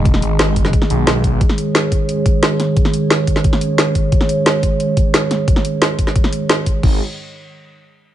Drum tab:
CC |----------------|----------------|----------------|----------------|
HH |x-x-x-x-x-x-x-x-|x-x-x-x-x-x-x-x-|x-x-x-x-x-x-x-x-|x-x-x-x-x-x-x-x-|
SD |-o--o--o-o--o---|-o--o-------o-o-|-o--o--o-o--o---|-o--o-------o-o-|
BD |o-----o-o-----o-|o-----o---o-----|o-----o-o-----o-|o-----o---o-----|

CC |----------------|x---------------|
HH |x-x-x-x-x-x-x-x-|----------------|
SD |-o--o--o-o--o---|----------------|
BD |o-----o-o-----o-|o---------------|